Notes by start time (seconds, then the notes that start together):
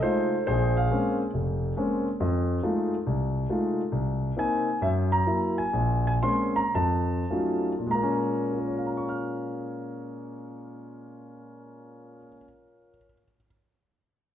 Already playing: A4
0.03 G#3 A3 D#4 F4 C5
0.47 A#1 G#4 C5
0.77 F5
0.91 G#3 A#3 C4 C#4
1.34 F1
1.77 G#3 A#3 C4 C#4
2.20 F2
2.63 G#3 A3 D#4 F4
3.07 C2
3.50 G#3 A3 D#4 F4
3.92 C2
4.36 A#3 C4 D#4 G#5
4.81 F#2 E5
5.12 A#5
5.26 F#3 A#3 E4
5.58 G#5
5.73 A#1
6.07 G#5
6.23 G#3 A#3 C4 C#4 C6
6.56 A#5
6.75 F2 A5
7.30 F#3 A3 C#4 D#4 F4
7.78 A#2
7.87 G#3
7.91 A#3 A#5
8.03 C#4
8.52 F4
8.59 A#4
8.68 C#5
8.77 F5
8.87 A#5
8.97 C#6
9.09 F6